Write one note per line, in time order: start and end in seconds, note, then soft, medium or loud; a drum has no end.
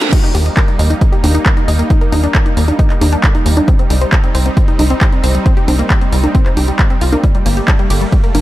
0.00 0.09 A3 medium
0.00 snare loud
0.00 closed hi-hat medium
0.00 reverse cymbal medium
0.00 riser medium
0.00 high conga medium
0.12 8.41 G3 medium
0.12 3.64 A#3 medium
0.12 3.64 D#4 medium
0.12 0.17 D#4 medium
0.12 kick loud
0.12 closed hi-hat medium
0.12 crash loud
0.24 0.31 D#4 medium
0.24 closed hi-hat soft
0.35 0.50 D#2 loud
0.35 0.45 G4 medium
0.35 open hi-hat loud
0.46 0.54 D#5 medium
0.46 closed hi-hat medium
0.57 0.62 A#4 medium
0.57 kick loud
0.57 clap loud
0.57 closed hi-hat medium
0.68 0.76 D#4 medium
0.68 closed hi-hat soft
0.79 0.94 D#2 loud
0.79 0.90 D#5 medium
0.79 open hi-hat medium
0.90 0.98 D#4 medium
0.90 closed hi-hat medium
1.01 1.06 D#4 medium
1.01 kick loud
1.01 closed hi-hat medium
1.12 1.20 G4 medium
1.12 closed hi-hat soft
1.23 1.39 D#2 medium
1.23 1.34 G4 medium
1.23 open hi-hat loud
1.23 high conga medium
1.35 1.42 D#4 loud
1.35 closed hi-hat medium
1.46 1.50 A#4 medium
1.46 kick loud
1.46 clap loud
1.46 closed hi-hat medium
1.57 1.65 D#4 medium
1.57 closed hi-hat soft
1.68 1.83 D#2 medium
1.68 1.79 D#5 medium
1.68 open hi-hat medium
1.79 1.87 A#3 medium
1.79 closed hi-hat medium
1.90 1.98 D#4 loud
1.90 kick loud
1.90 closed hi-hat medium
2.01 2.09 A#4 medium
2.01 closed hi-hat soft
2.12 2.28 D#2 loud
2.12 2.17 D#4 loud
2.12 open hi-hat loud
2.12 high conga medium
2.24 2.31 D4 loud
2.24 closed hi-hat medium
2.35 2.39 A#4 medium
2.35 kick loud
2.35 clap loud
2.35 closed hi-hat medium
2.46 2.54 D#4 medium
2.46 closed hi-hat soft
2.57 2.72 D#2 loud
2.57 2.65 A#3 medium
2.57 open hi-hat medium
2.68 2.76 D4 medium
2.68 closed hi-hat medium
2.68 high conga medium
2.79 2.87 D#4 loud
2.79 kick loud
2.79 closed hi-hat medium
2.90 2.95 D#5 medium
2.90 clap soft
2.90 closed hi-hat soft
3.01 3.16 D#2 medium
3.01 3.12 G4 medium
3.01 open hi-hat loud
3.01 high conga medium
3.13 3.23 D4 loud
3.13 closed hi-hat medium
3.23 3.31 A4 medium
3.23 kick loud
3.23 clap loud
3.23 closed hi-hat medium
3.35 3.43 D#4 medium
3.35 closed hi-hat soft
3.46 3.61 D#2 medium
3.46 3.54 A#3 medium
3.46 open hi-hat loud
3.57 3.65 D4 medium
3.57 closed hi-hat medium
3.57 high conga medium
3.68 7.20 C4 medium
3.68 3.73 C4 medium
3.68 7.20 D#4 medium
3.68 kick loud
3.68 closed hi-hat medium
3.79 3.87 C4 medium
3.79 closed hi-hat soft
3.90 4.05 C2 loud
3.90 4.01 D#4 medium
3.90 open hi-hat loud
4.01 4.09 C5 medium
4.01 closed hi-hat medium
4.12 4.17 G4 medium
4.12 kick loud
4.12 clap loud
4.12 closed hi-hat medium
4.24 4.31 C4 medium
4.24 closed hi-hat soft
4.35 4.50 C2 loud
4.35 4.45 C5 medium
4.35 open hi-hat loud
4.46 4.54 C4 medium
4.46 closed hi-hat medium
4.57 4.62 C4 medium
4.57 kick loud
4.57 closed hi-hat medium
4.68 4.76 D#4 medium
4.68 closed hi-hat soft
4.79 4.94 C2 loud
4.79 4.90 D#4 medium
4.79 open hi-hat loud
4.79 high conga medium
4.90 4.98 C4 loud
4.90 closed hi-hat medium
5.01 5.06 G4 medium
5.01 kick loud
5.01 clap loud
5.01 closed hi-hat medium
5.12 5.20 C4 medium
5.12 closed hi-hat soft
5.23 5.39 C2 medium
5.23 5.34 C5 medium
5.23 open hi-hat loud
5.35 5.42 G3 medium
5.35 closed hi-hat medium
5.46 5.54 C4 loud
5.46 kick loud
5.46 closed hi-hat soft
5.57 5.65 G4 medium
5.57 closed hi-hat soft
5.68 5.83 C2 loud
5.68 5.73 C4 loud
5.68 open hi-hat loud
5.68 high conga medium
5.79 5.87 A#3 loud
5.79 closed hi-hat medium
5.90 5.95 G4 medium
5.90 kick loud
5.90 clap loud
5.90 closed hi-hat medium
6.01 6.09 C4 medium
6.01 closed hi-hat soft
6.12 6.28 C2 medium
6.12 6.20 G3 medium
6.12 open hi-hat loud
6.24 6.31 A#3 medium
6.24 closed hi-hat soft
6.24 high conga medium
6.35 6.42 C4 loud
6.35 kick loud
6.35 closed hi-hat medium
6.46 6.50 C5 medium
6.46 clap soft
6.46 closed hi-hat soft
6.57 6.72 C2 medium
6.57 6.62 G4 medium
6.57 open hi-hat loud
6.57 high conga medium
6.68 6.79 G3 medium
6.68 closed hi-hat soft
6.79 6.87 C4 medium
6.79 kick loud
6.79 clap loud
6.79 closed hi-hat medium
6.90 6.98 C4 medium
6.90 closed hi-hat soft
7.01 7.16 C2 loud
7.01 7.09 F4 loud
7.01 open hi-hat loud
7.13 7.23 A#3 loud
7.13 closed hi-hat medium
7.13 high conga medium
7.24 7.28 G3 medium
7.24 8.41 A3 medium
7.24 8.41 A#3 medium
7.24 kick loud
7.24 closed hi-hat medium
7.35 7.43 G3 medium
7.35 closed hi-hat soft
7.46 7.61 G1 loud
7.46 7.56 A#3 medium
7.46 open hi-hat loud
7.46 ride medium
7.57 7.65 G4 medium
7.57 closed hi-hat soft
7.68 7.73 D4 medium
7.68 kick loud
7.68 clap loud
7.68 closed hi-hat medium
7.79 7.87 G3 medium
7.79 closed hi-hat soft
7.90 8.05 G1 loud
7.90 8.01 G4 medium
7.90 open hi-hat medium
7.90 ride medium
8.01 8.09 G3 medium
8.01 closed hi-hat medium
8.12 8.17 G3 medium
8.12 kick loud
8.12 closed hi-hat medium
8.24 8.31 A#3 medium
8.24 closed hi-hat soft
8.34 8.41 G1 medium
8.34 8.41 A#3 medium
8.34 open hi-hat loud
8.34 ride medium
8.34 high conga medium